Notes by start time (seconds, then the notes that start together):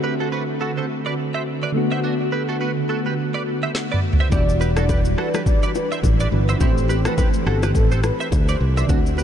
Already playing: D3 A3 C4 F#4
0.04 G4 B4
0.20 F#4 A4
0.32 F#4 B4
0.61 F#4 A4
0.77 A4 C5
1.06 B4 D5
1.34 C5 E5
1.63 B4 D5
1.72 D3 A3 B3
1.77 F#4
1.92 C5 E5
2.04 D4 F#4
2.32 G4 B4
2.49 F#4 A4
2.61 F#4 B4
2.89 F#4 A4
3.06 G4 B4
3.34 B4 D5
3.63 C5 E5
3.75 snare
3.92 B4 D5, mid tom
4.13 floor tom
4.20 C5 E5
4.30 E1 E3 G3 D4 E4 G4 D5, kick, low conga, shaker
4.35 F#4
4.49 shaker
4.60 G4 B4, low bongo, shaker
4.77 F#4 A4 D5, cross-stick, low bongo, shaker
4.89 G4 B4, kick, high bongo, low conga, shaker
5.05 shaker
5.18 F#4 A4 B4, cross-stick
5.34 G4 B4, cross-stick, low bongo, shaker
5.46 D5, kick, low conga, shaker
5.63 B4 D5, shaker
5.75 B4, low bongo, shaker
5.92 C5 E5, shaker
6.03 A1, kick, high bongo, shaker
6.20 B4 D5, shaker
6.31 G1 E3 G3 D4 F#4 B4
6.49 C5 E5, high bongo, shaker
6.58 A1 E3 A3 C4 E4 G4 C5, kick, low conga, shaker
6.63 G4
6.78 shaker
6.88 G4 B4, low bongo, shaker
7.05 F#4 A4 B4, cross-stick, low bongo, shaker
7.18 G4 B4, kick, high bongo, low conga, shaker
7.34 shaker
7.46 G1 F#4 A4, cross-stick
7.63 G4 B4, cross-stick, low bongo, shaker
7.75 A1 A4, kick, low conga, shaker
7.91 A4 C5, shaker
8.03 B4, cross-stick, low bongo, shaker
8.20 C5 E5, shaker
8.32 D2, kick, high bongo, shaker
8.49 B4 C5 D5, shaker
8.61 C2
8.77 C5 D5 E5, high bongo, shaker
8.87 D2 D3 A3 C4 D4 F#4, kick, low conga, shaker
8.92 F#4
9.06 shaker
9.17 G4 B4, low bongo, shaker